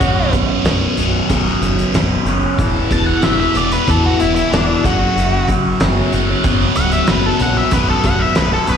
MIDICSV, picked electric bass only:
0, 0, Header, 1, 2, 480
1, 0, Start_track
1, 0, Tempo, 642398
1, 8, Time_signature, 4, 2, 24, 8
1, 6554, End_track
2, 0, Start_track
2, 0, Title_t, "Picked electric bass"
2, 0, Program_c, 0, 34
2, 10, Note_on_c, 0, 23, 83
2, 326, Note_off_c, 0, 23, 0
2, 481, Note_on_c, 0, 23, 83
2, 642, Note_off_c, 0, 23, 0
2, 733, Note_on_c, 0, 23, 83
2, 890, Note_off_c, 0, 23, 0
2, 968, Note_on_c, 0, 23, 83
2, 1127, Note_off_c, 0, 23, 0
2, 1204, Note_on_c, 0, 30, 86
2, 1364, Note_off_c, 0, 30, 0
2, 1450, Note_on_c, 0, 23, 84
2, 1609, Note_off_c, 0, 23, 0
2, 1682, Note_on_c, 0, 30, 87
2, 1844, Note_off_c, 0, 30, 0
2, 1928, Note_on_c, 0, 28, 89
2, 2088, Note_off_c, 0, 28, 0
2, 2171, Note_on_c, 0, 28, 83
2, 2330, Note_off_c, 0, 28, 0
2, 2421, Note_on_c, 0, 28, 80
2, 2577, Note_off_c, 0, 28, 0
2, 2654, Note_on_c, 0, 28, 85
2, 2812, Note_off_c, 0, 28, 0
2, 2898, Note_on_c, 0, 40, 85
2, 3055, Note_off_c, 0, 40, 0
2, 3147, Note_on_c, 0, 28, 82
2, 3301, Note_off_c, 0, 28, 0
2, 3383, Note_on_c, 0, 28, 80
2, 3538, Note_off_c, 0, 28, 0
2, 3620, Note_on_c, 0, 30, 80
2, 3776, Note_off_c, 0, 30, 0
2, 3857, Note_on_c, 0, 30, 89
2, 4172, Note_off_c, 0, 30, 0
2, 4338, Note_on_c, 0, 30, 86
2, 4495, Note_off_c, 0, 30, 0
2, 4578, Note_on_c, 0, 30, 92
2, 4735, Note_off_c, 0, 30, 0
2, 4815, Note_on_c, 0, 30, 80
2, 4973, Note_off_c, 0, 30, 0
2, 5055, Note_on_c, 0, 25, 82
2, 5212, Note_off_c, 0, 25, 0
2, 5301, Note_on_c, 0, 30, 82
2, 5456, Note_off_c, 0, 30, 0
2, 5528, Note_on_c, 0, 34, 83
2, 5687, Note_off_c, 0, 34, 0
2, 5767, Note_on_c, 0, 23, 88
2, 5926, Note_off_c, 0, 23, 0
2, 6006, Note_on_c, 0, 23, 78
2, 6165, Note_off_c, 0, 23, 0
2, 6249, Note_on_c, 0, 23, 81
2, 6407, Note_off_c, 0, 23, 0
2, 6483, Note_on_c, 0, 23, 87
2, 6554, Note_off_c, 0, 23, 0
2, 6554, End_track
0, 0, End_of_file